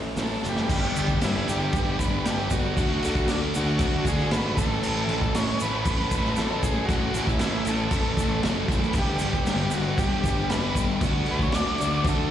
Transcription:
Already playing: A3 C#4 E4
0.16 A1 E3 A3 C#4 E4, snare, open hi-hat, shaker
0.23 A4
0.42 F#1 C#4 E4, snare, shaker
0.47 A3 G4
0.56 snare
0.68 G1 G2 D3 G3 B3 D4 G4, kick, crash, shaker
0.95 G1 G2 D3 G3 B3 D4 G4, crash, shaker
1.08 kick, shaker
1.20 G1 G2 D3 G3 B3 D4 G4, snare, crash, shaker
1.24 E4
1.46 G1 G2 D3 G3 B3 D4 G4, crash, shaker
1.51 G4
1.73 G1 G2 D3, kick, crash, shaker
1.77 G3 B3 D4 G4
1.99 G1 G2 D3 G3 B3 D4 B4, kick, crash, shaker
2.03 G4
2.24 G1 G2 D3 G3 B3 D4 G4, snare, crash, shaker
2.50 G2 D3 G3 B3 D4 F#4 G4, kick, crash, shaker
2.75 D2 D3 A3 D4 F#4, kick, crash, shaker
3.02 D2 D3 A3 D4, crash, shaker
3.06 F#4
3.15 kick, shaker
3.28 D2 D3 A3 D4 F#4, snare, crash, shaker
3.54 D2 D3 A3 D4 F#4, crash, shaker
3.79 D2 D3 A3 D4 F#4, kick, crash, shaker
4.05 D2 D3 A3 D4 G#4, kick, crash, shaker
4.09 F#4
4.19 snare
4.31 G#1 D3 A3 D4 F#4 B4, snare, crash, shaker
4.56 A1 A2 E3 A3 C#4 A4, kick, crash, shaker
4.82 A1 A2 E3, crash, shaker
4.86 A3 C#4 A4
5.08 A1 A2 E3, crash
5.13 A3 C#4 A4
5.21 kick, shaker
5.35 A1 A2 E3 A3 C#4 C#5, snare, crash, shaker
5.39 A4
5.60 A1 A2 E3 A3 B4, crash, shaker
5.65 C#4 A4
5.85 A1 A2, kick, crash, shaker
5.90 E3 A3 C#4 A4
6.11 A1, kick, crash, shaker
6.15 A2 E3 A3 C#4 A4
6.25 snare
6.36 A1 A2 E3 A4, snare, crash, shaker
6.40 A3 C#4 A4
6.62 A2 E3 A3 C#4 G#4 A4, kick, crash, shaker
6.85 A1 F#4, kick, crash
6.90 A2 E3 A3 C#4 A4, shaker
7.14 A1 A2 E3 A3, crash, shaker
7.19 C#4 A4
7.27 E4, kick, shaker
7.39 A1 A2 E3, snare, crash, shaker
7.43 A3 C#4 A4
7.65 A1 A4, crash, shaker
7.69 A2 E3 A3 C#4 A4
7.91 A1 A2 E3 A3, kick, crash, shaker
7.96 C#4 A4
8.17 A1 A2 E3, kick, crash, shaker
8.21 A3 C#4 A4
8.43 F#1 A2 E3 A3 C#4 A4, snare, crash, shaker
8.68 A2 E3 A3 C#4, kick, crash, shaker
8.73 A4
8.84 shaker
8.88 B4
8.93 G1 G2 D3 G3 B3, kick, crash, shaker
8.97 D4 G4
9.19 G1 G2 D3, crash, shaker
9.24 G3 B3 D4 G4
9.33 kick, shaker
9.46 G1 G2 D3 G3 B3 D4, snare, crash, shaker
9.51 G4
9.71 G1 G2 F#4, crash, shaker
9.75 D3 G3 B3 D4 G4
9.98 G1 G2 D3 G4, kick, crash, shaker
10.02 G3 B3 D4 G4
10.24 G1 G2 D3 G3 B3, kick, crash, shaker
10.28 D4 G4
10.50 G1 G2 D3 G3 B3 D4 B4, snare, crash, shaker
10.54 G4
10.75 G2 D3 G3 B3, kick, crash, shaker
10.80 D4 G4
11.01 D2 D3, kick, crash, shaker
11.05 A3 D4 F#4
11.26 D2 D3 A3, crash
11.30 D4 F#4 B4
11.39 C#5, kick, shaker
11.52 D2 D3 A3 D4 F#4 D5, snare, crash, shaker
11.78 D2 D3 A3 D4, crash, shaker
11.83 F#4
12.04 D2 D3 A3 D4 F#4, kick, crash, shaker
12.09 A4

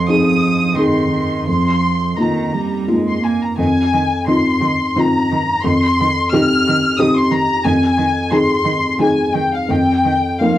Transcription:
Already playing: F2 F3
0.08 C4 D#4 G#4 D#6
0.74 D#3 C4 D#4 G#4 C6
1.10 D#3
1.45 F2 F3 C6
2.17 D#3 A#3 D#4 F4 A#5
2.53 G3
2.88 G#3 A#3 D#4 F4
3.07 C6
3.22 A#3 G#5
3.41 A#5
3.57 F2 D#3 G#5
3.93 D#3
4.26 D#3 C4 D#4 F4 C6
4.61 D#3
4.96 D#3 C4 D#4 F4 A#5
5.31 D#3
5.63 F2 D#3 C6
6.00 D#3
6.31 D#3 C4 D#4 G4 F6
6.67 D#3
6.98 D#3 C4 D#4 G4 D#6
7.16 C6
7.31 D#3 A#5
7.65 F2 D#3 G#5
7.97 D#3
8.31 D#3 C4 D#4 G#4 C6
8.64 D#3
8.99 D#3 C4 D#4 G#4 G#5
9.34 D#3 G5
9.53 F5
9.69 F2 D#3 G5
10.04 D#3
10.40 F3 A#3 D#4 A#4 F5

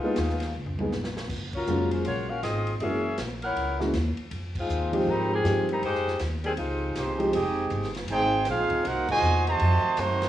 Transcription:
Already playing: G#3 B3 D#4 F4
0.03 G#3 A#3 B3 D#4 F4, muted upright bass stroke
0.16 D#2, kick, snare, hi-hat pedal, ride
0.30 snare
0.40 snare, ride
0.55 C#2
0.66 floor tom
0.79 G#3 A#3 B3 D#4 G#4, high tom
0.92 A#1, snare, hi-hat pedal
1.04 snare
1.17 snare
1.29 F#1, kick, snare, crash
1.53 F#3 C#4 F4 A#4, kick, crash
1.67 F1 F#3 G#3 A#3 C#4 F4, hi-hat pedal
1.91 G#3 C#4 F4 C5, ride
2.05 A#1 A#3 F4 F#4 C#5, kick, ride
2.29 C#4 F#4 A#4 F5
2.42 G#1 C4 F4 G#4 D#5, kick, snare, hi-hat pedal, ride
2.67 ride
2.79 F#1 E3 G#3 A#3 C#4 F#4 G#4 A#4 D#5 E5, kick, ride
3.18 A#1, kick, snare, hi-hat pedal, ride
3.42 E4 A#4 C#5 F#5, ride
3.56 C#2, kick, ride
3.79 E3 G#3 A#3 C#4 F#4, snare
3.94 D#2, kick, snare, hi-hat pedal, ride
4.17 muted upright bass stroke, ride
4.31 F2, kick, ride
4.55 G#3, kick, crash
4.59 C4 D#4 F4
4.69 D#2, hi-hat pedal
4.92 F3 G#3 C4 D#4 G4, ride
5.07 G#2 G3 C4 D#4 A#4, kick
5.33 D#3 C4 G4 G#4
5.43 G2 F3 G#3 C4 D#4 G4, kick, snare, hi-hat pedal, ride
5.69 G3 C4 D#4, ride
5.73 A#4
5.82 F2 G#3 D#4 G4 C5, kick, ride
5.95 snare
6.08 snare
6.19 D#2, kick, snare, hi-hat pedal, ride
6.44 D#3 G3 C4 G#4, ride
6.57 C#2 G#2 C3 F3 G#3 C4 D#4 F4, kick, ride
6.95 C2 D#3 G#3 C4 D#4 G4 C5, kick, snare, hi-hat pedal, ride
7.18 F3 G#3 C4 D#4 G4, ride
7.33 F1 G#3 C4 D#4 G4 G#4 D#5, kick, ride
7.70 G1, kick, hi-hat pedal, ride
7.84 snare
7.94 snare, ride
8.08 G#1 C4 D#4 G#4 C5 G5, kick, ride
8.45 A#1 G#3 C4 F4, kick, snare, hi-hat pedal, ride
8.49 D#4 G#4 C5 F5
8.70 muted upright bass stroke, kick, ride
8.85 C2 A#3 D#4 F#4 A#4 C5 F#5, kick, ride
9.08 A#2 D#3 G#3 F#4 C5 D#5 G#5, kick, crash
9.22 E2, hi-hat pedal
9.47 C3 D#3 A3 F#4 C5 D#5 A5, ride
9.60 F2, kick, ride
9.84 muted upright bass stroke
9.97 F#2 A3 D#4 F#4 C5, kick, hi-hat pedal, ride
10.01 D#3 C4
10.22 snare, ride

